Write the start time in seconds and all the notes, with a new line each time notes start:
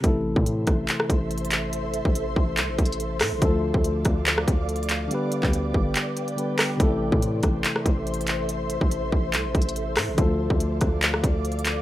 0.01 A1 C3 E3 A3 A4 C5 E5 C6, kick, closed hi-hat
0.05 E4 A4
0.36 A2, kick
0.46 closed hi-hat
0.67 A1, kick, cross-stick, closed hi-hat
0.88 clap, closed hi-hat
1.00 cross-stick
1.10 A1, kick, closed hi-hat
1.31 closed hi-hat
1.38 closed hi-hat
1.45 closed hi-hat
1.51 clap, closed hi-hat
1.73 closed hi-hat
1.94 closed hi-hat
2.05 A1, kick
2.15 closed hi-hat
2.36 A1, kick
2.57 C2, clap, closed hi-hat
2.68 A1
2.78 A1, kick, closed hi-hat
2.85 closed hi-hat
2.92 closed hi-hat
3.00 closed hi-hat
3.20 A2, cross-stick, clap, open hi-hat
3.32 A1
3.39 D2 D3 F3 A3 D5 F5 D6, kick, closed hi-hat
3.44 F4 A4
3.74 D2, kick
3.84 closed hi-hat
4.05 D2, kick, cross-stick, closed hi-hat
4.26 clap, closed hi-hat
4.38 cross-stick
4.48 D2, kick, closed hi-hat
4.69 closed hi-hat
4.76 closed hi-hat
4.83 closed hi-hat
4.89 clap, closed hi-hat
5.08 D3 G3 B3 B4 G5, closed hi-hat
5.13 G4 B4
5.32 closed hi-hat
5.43 D2, kick, clap
5.53 closed hi-hat
5.74 G1, kick
5.95 clap, closed hi-hat
6.17 closed hi-hat
6.28 closed hi-hat
6.36 D3 G3 B3 G4 B4, closed hi-hat
6.58 cross-stick, clap, open hi-hat
6.77 A1 C3 E3 A3 A4 C5 E5 C6, kick, closed hi-hat
6.81 E4 A4
7.12 A2, kick
7.22 closed hi-hat
7.43 A1, kick, cross-stick, closed hi-hat
7.64 clap, closed hi-hat
7.76 cross-stick
7.86 A1, kick, closed hi-hat
8.07 closed hi-hat
8.14 closed hi-hat
8.21 closed hi-hat
8.27 clap, closed hi-hat
8.49 closed hi-hat
8.70 closed hi-hat
8.81 A1, kick
8.91 closed hi-hat
9.12 A1, kick
9.33 C2, clap, closed hi-hat
9.45 A1
9.55 A1, kick, closed hi-hat
9.62 closed hi-hat
9.69 closed hi-hat
9.76 closed hi-hat
9.96 A2, cross-stick, clap, open hi-hat
10.08 A1
10.15 D2 D3 F3 A3 D5 F5 D6, kick, closed hi-hat
10.20 F4 A4
10.50 D2, kick
10.60 closed hi-hat
10.81 D2, kick, cross-stick, closed hi-hat
11.02 clap, closed hi-hat
11.14 cross-stick
11.24 D2, kick, closed hi-hat
11.45 closed hi-hat
11.52 closed hi-hat
11.59 closed hi-hat
11.65 clap, closed hi-hat